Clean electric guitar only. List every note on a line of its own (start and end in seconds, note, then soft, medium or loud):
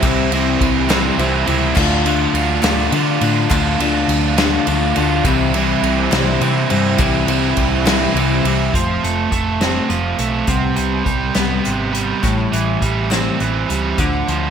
0.01 0.29 C3 medium
0.01 0.30 G3 medium
0.01 0.31 C4 loud
0.01 0.31 E4 loud
0.30 0.88 C3 medium
0.30 0.88 G3 medium
0.30 0.89 C4 medium
0.30 0.89 E4 loud
0.89 1.16 C3 medium
0.89 1.17 G3 loud
0.89 1.17 C4 loud
0.89 1.18 E4 loud
1.18 1.45 C3 medium
1.18 1.46 G3 medium
1.18 1.47 C4 medium
1.18 1.47 E4 loud
1.46 1.74 C3 medium
1.46 1.75 G3 medium
1.46 1.75 C4 medium
1.46 1.75 E4 loud
1.76 2.04 D3 medium
1.76 2.06 A3 loud
1.76 2.06 D4 loud
1.76 2.06 F4 loud
2.05 2.61 D3 medium
2.05 2.61 A3 medium
2.05 2.62 D4 medium
2.05 2.63 F4 medium
2.62 2.90 D3 medium
2.62 2.91 A3 loud
2.62 2.91 D4 loud
2.62 2.92 F4 loud
2.91 3.19 D3 medium
2.91 3.20 A3 medium
2.91 3.20 D4 loud
2.91 3.21 F4 medium
3.20 3.48 D3 medium
3.20 3.49 A3 medium
3.20 3.49 D4 medium
3.20 3.50 F4 loud
3.49 3.79 D3 loud
3.49 3.79 A3 loud
3.49 3.79 D4 loud
3.49 3.80 F4 loud
3.80 4.36 D3 medium
3.80 4.36 A3 loud
3.80 4.37 D4 medium
3.80 4.38 F4 loud
4.37 4.65 D3 loud
4.37 4.66 A3 loud
4.37 4.66 D4 loud
4.37 4.67 F4 loud
4.67 4.94 D3 medium
4.67 4.94 A3 medium
4.67 4.95 D4 medium
4.67 4.96 F4 loud
4.95 5.23 D3 medium
4.95 5.23 A3 medium
4.95 5.23 D4 medium
4.95 5.23 F4 medium
5.24 5.52 C3 loud
5.24 5.53 E3 loud
5.24 5.54 G3 loud
5.24 5.54 C4 loud
5.24 5.55 E4 loud
5.53 6.10 C3 medium
5.53 6.12 E3 medium
5.53 6.12 G3 medium
5.53 6.13 C4 medium
5.53 6.13 E4 loud
6.11 6.38 C3 loud
6.11 6.40 E3 loud
6.11 6.39 G3 loud
6.11 6.41 C4 loud
6.11 6.41 E4 loud
6.39 6.68 C3 medium
6.39 6.69 E3 loud
6.39 6.68 G3 medium
6.39 6.70 C4 loud
6.39 6.70 E4 loud
6.69 6.97 C3 medium
6.69 6.97 E3 medium
6.69 6.97 G3 medium
6.69 6.98 C4 loud
6.69 6.99 E4 medium
6.98 7.25 C3 medium
6.98 7.26 E3 medium
6.98 7.26 G3 loud
6.98 7.27 C4 loud
6.98 7.27 E4 loud
7.26 7.83 C3 medium
7.26 7.84 E3 medium
7.26 7.85 G3 medium
7.26 7.85 C4 medium
7.26 7.86 E4 medium
7.85 8.12 C3 medium
7.85 8.13 E3 loud
7.85 8.13 G3 loud
7.85 8.14 C4 loud
7.85 8.14 E4 loud
8.13 8.41 C3 medium
8.13 8.42 E3 medium
8.13 8.42 G3 loud
8.13 8.43 C4 medium
8.13 8.43 E4 medium
8.42 8.71 C3 medium
8.42 8.71 E3 medium
8.42 8.71 G3 medium
8.42 8.71 C4 medium
8.42 8.72 E4 loud
8.72 9.29 F3 medium
8.72 9.29 A3 medium
8.72 9.30 C4 medium
9.30 9.57 F3 medium
9.59 9.87 F3 medium
9.59 9.88 A3 medium
9.59 9.88 C4 medium
9.88 10.15 F3 medium
9.88 10.16 A3 medium
10.47 11.04 C3 medium
10.47 11.04 G3 medium
10.47 11.05 B3 medium
11.05 11.32 C3 medium
11.05 11.32 G3 medium
11.35 11.63 C3 medium
11.35 11.63 G3 loud
11.35 11.64 B3 medium
11.65 11.91 C3 medium
11.65 11.91 G3 medium
12.22 12.79 A2 medium
12.22 12.79 E3 medium
12.22 12.80 G3 medium
12.81 13.07 A2 medium
13.11 13.38 A2 medium
13.11 13.38 E3 medium
13.11 13.39 G3 medium
13.40 13.66 A2 medium
13.40 13.66 E3 medium
13.98 14.50 D3 medium
13.98 14.50 F3 medium
13.98 14.50 A3 medium